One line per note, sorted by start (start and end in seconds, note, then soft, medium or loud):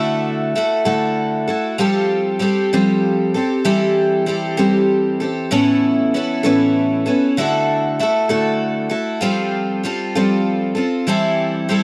0.00 0.53 D3 medium
0.00 0.55 A3 medium
0.00 0.54 E4 medium
0.00 0.54 F#4 medium
0.00 0.57 A4 medium
0.55 0.85 A3 medium
0.55 0.85 E4 medium
0.55 0.84 F#4 medium
0.55 0.84 A4 medium
0.85 1.48 D3 medium
0.85 1.78 A3 medium
0.85 1.48 E4 medium
0.85 1.47 F#4 medium
0.85 1.47 A4 medium
1.48 1.78 E4 soft
1.48 1.79 F#4 soft
1.48 1.78 A4 medium
1.78 2.40 F3 medium
1.78 2.39 G3 medium
1.78 2.40 C4 medium
1.78 2.42 G4 medium
1.78 2.42 A4 medium
2.39 2.71 G3 medium
2.39 2.71 C4 medium
2.39 2.72 G4 medium
2.39 2.72 A4 medium
2.73 3.35 F3 medium
2.73 3.35 G3 medium
2.73 3.35 C4 medium
2.73 3.35 G4 medium
2.73 3.34 A4 medium
3.34 3.64 C4 soft
3.34 3.64 G4 soft
3.34 3.64 A4 medium
3.65 4.59 E3 medium
3.65 4.25 G3 medium
3.65 4.26 C4 medium
3.65 4.27 G4 medium
3.65 4.29 A4 medium
4.26 4.58 G3 medium
4.26 4.58 C4 medium
4.26 4.56 G4 medium
4.26 4.56 A4 medium
4.57 5.51 E3 medium
4.57 5.21 G3 medium
4.57 5.20 C4 medium
4.57 5.20 G4 medium
4.57 5.20 A4 medium
5.20 5.51 C4 soft
5.20 5.52 G4 soft
5.20 5.51 A4 medium
5.51 6.13 A2 medium
5.51 6.45 E3 medium
5.51 6.13 B3 medium
5.51 6.13 C#4 medium
5.51 6.16 E4 medium
5.51 6.17 A4 medium
6.14 6.44 B3 medium
6.14 6.44 C#4 medium
6.14 6.43 E4 medium
6.14 6.42 A4 medium
6.43 7.07 A2 medium
6.43 7.07 E3 medium
6.43 7.06 B3 medium
6.43 7.06 C#4 medium
6.43 7.05 E4 medium
6.43 7.05 A4 medium
7.06 7.38 B3 soft
7.06 7.38 C#4 soft
7.06 7.37 E4 soft
7.06 7.37 A4 medium
7.37 7.99 D3 medium
7.37 7.99 A3 medium
7.37 7.99 E4 medium
7.37 7.99 F#4 medium
7.37 8.02 A4 medium
7.99 8.29 A3 medium
7.99 8.29 E4 medium
7.99 8.29 F#4 medium
7.99 8.28 A4 medium
8.29 8.92 D3 medium
8.29 9.21 A3 medium
8.29 8.90 E4 medium
8.29 8.90 F#4 medium
8.29 8.89 A4 medium
8.90 9.22 E4 soft
8.90 9.22 F#4 medium
8.90 9.22 A4 medium
9.21 9.83 F3 medium
9.21 9.83 G3 medium
9.21 9.85 C4 medium
9.21 9.83 F4 medium
9.21 9.86 A4 medium
9.84 10.15 G3 medium
9.84 10.15 C4 medium
9.84 10.14 F4 medium
9.84 10.14 A4 medium
10.15 10.78 F3 medium
10.15 10.78 G3 medium
10.15 10.77 C4 medium
10.15 10.75 F4 medium
10.15 10.74 A4 medium
10.75 11.07 C4 soft
10.75 11.08 F4 medium
10.75 11.07 A4 medium
11.07 11.69 E3 medium
11.07 11.67 G3 medium
11.07 11.68 C4 medium
11.07 11.69 E4 medium
11.07 11.70 A4 medium
11.69 11.83 G3 medium
11.69 11.83 C4 medium
11.69 11.83 E4 medium
11.69 11.83 A4 medium